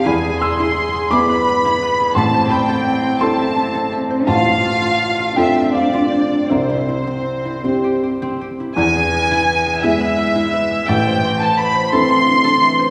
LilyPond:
<<
  \new Staff \with { instrumentName = "Violin section" } { \time 6/8 \key a \minor \tempo 4. = 57 gis''8 c'''4 b''4. | a''8 g''4 a''4 r8 | f''4. e''8 d''4 | c''2~ c''8 r8 |
gis''4. e''4. | g''8. a''16 b''8 c'''4. | }
  \new Staff \with { instrumentName = "Harp" } { \time 6/8 \key a \minor e'16 gis'16 gis'16 e'8 gis'16 e'16 b'16 b'16 e'16 b'16 gis'16 | a'16 c''16 c''16 a'8 c''16 a'16 e''16 e''16 a'16 e''16 c''16 | f'16 a'16 a'16 f'8 a'16 f'16 c''16 c''16 f'16 c''16 a'16 | c'16 e'16 e'16 c'8 e'16 c'16 g'16 g'16 c'16 g'16 e'16 |
e'16 gis'16 gis'16 e'8 gis'16 e'16 b'16 b'16 e'16 b'16 gis'16 | a'16 c''16 c''16 a'8 c''16 a'16 e''16 e''16 a'16 e''16 c''16 | }
  \new Staff \with { instrumentName = "Upright piano" } { \time 6/8 \key a \minor << { b''8 e'''4 d'''4. | c'''8 b''4 c'''4 r8 | a''4. g''8 f''4 | e''2~ e''8 r8 |
r2. | r2. | } \\ { e,4. <b e' gis'>4. | a,,4. <c' e' a'>4. | a,,4. <c' f' a'>4. | c,4. <c' e' g'>4. |
e,4. <b e' gis'>4. | a,,4. <c' e' a'>4. | } >> }
  \new Staff \with { instrumentName = "Cello" } { \time 6/8 \key a \minor gis'4. b4. | c'2. | f'4. d'4. | c'2~ c'16 r8. |
e4. gis4. | e4. e8 d8 e8 | }
>>